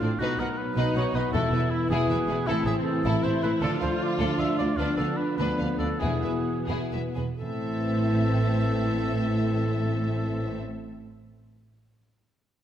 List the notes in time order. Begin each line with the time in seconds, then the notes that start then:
Already playing: A2 A3 D4 F4
0.00 A1 A2 C4 D4 A4 D5
0.18 B1 B2 F#3 B3 D#4 F#4 B4
0.38 B1 B2 D#4 A#4 B4 F#5
0.58 B4
0.76 B1 B2 D#4 B4
0.95 B1 B2 D#4 B4 C#5 F#5
1.13 B1 B2 B4 D#5
1.18 D#4 F#4
1.32 E1 E2 E3 E4 A4
1.51 E1 E2 E4 B4 E5
1.70 E4
1.89 E1 E2 B3 E4 G#4
2.08 E1 E2 E4 B4 E5
2.27 E1 E2 E4 G#4 B4
2.47 A1 A2 C3 E3 A3 C4 E4 A4
2.65 A1 A2 E4 G#4 C5 E5
2.85 A4
3.04 A1 A2 E4 A4
3.22 A1 A2 E4 C5 E5
3.43 A1 A2 E4 A4 B4 C5
3.61 D2 D3 F3 A3 D4 F4 A4
3.81 D2 D4 A4 C5 F5
4.03 D5
4.19 D2 D4 A4
4.39 D2 D4 A4 E5 F5
4.58 D2 D4 F4 D5
4.77 D2 D3 F3 B3 D4 F4 B4
4.97 D2 D4 A4 B4 F5
5.17 B4
5.37 D2 D3 F3 B3 D4 B4
5.59 D2 D4 B4 F5
5.79 D2 D4 F4 A4 D5
6.00 E1 E2 B3 E4 G#4
6.04 B2 E3
6.24 E1 E2 B3 B4 E5
6.68 E1 E2 B3 E4 G#4
6.92 E1 E2 B3 B4 E5
7.16 E1 E2 B3 G#4 B4
7.39 A1 A2 E3 C4 E4 A4 E5